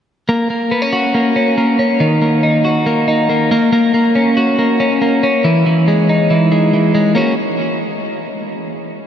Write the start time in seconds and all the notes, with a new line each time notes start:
0.29 A#3
0.50 A#3
0.71 B3
0.82 C#4
0.93 F#4
1.15 A#3
1.36 C#4
1.58 A#3
1.79 C#4
2.00 D#3
2.22 A#3
2.43 D#4
2.65 F#4
2.86 A#3
3.08 D#4
3.29 A#3
3.51 A#3
3.73 A#3
3.94 A#3
4.15 C#4
4.37 F#4
4.59 A#3
4.80 C#4
5.02 A#3
5.23 C#4
5.44 E3
5.66 E3
5.88 G#3
6.09 D#4
6.30 E3
6.52 G#3
6.73 E3
6.95 G#3
7.15 A#3 C#4 F#4